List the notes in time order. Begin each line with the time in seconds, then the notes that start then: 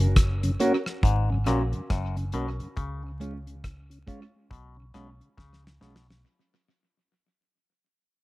Already playing: F#1
0.00 closed hi-hat
0.16 kick, cross-stick, closed hi-hat
0.43 F#2 C#3, closed hi-hat
0.60 A#3 C#4 F#4 A#4, closed hi-hat
0.86 cross-stick
1.03 G#1 G#2, kick, closed hi-hat
1.30 F#2 C#3
1.46 A#1 A#2 A#3 C#4 F#4 A#4, cross-stick, closed hi-hat
1.72 F#2 C#3, muted clean electric guitar stroke, closed hi-hat
1.90 F#1 F#2, kick, cross-stick, closed hi-hat
2.17 F#2 C#3, closed hi-hat
2.32 B1 B2 A#3 C#4 F#4 A#4, closed hi-hat
2.60 F#2 C#3, closed hi-hat
2.77 C#2 C#3, kick, closed hi-hat
3.03 C#3
3.20 G#3 C#4 F4, closed hi-hat
3.47 C#3, closed hi-hat
3.64 kick, cross-stick, closed hi-hat
3.90 C#3, closed hi-hat
4.07 G#3 C#4 F4, kick, closed hi-hat
4.51 B1 B2, kick, closed hi-hat
4.77 C#3
4.94 B1 B2 G#3 C#4 F4, cross-stick, closed hi-hat
5.20 C#3, muted clean electric guitar stroke, closed hi-hat
5.37 C#2 C#3, kick, snare
5.53 snare
5.64 C#3, snare
5.80 B1 B2 G#3 C#4 F4, snare
5.96 snare
6.08 C#3, snare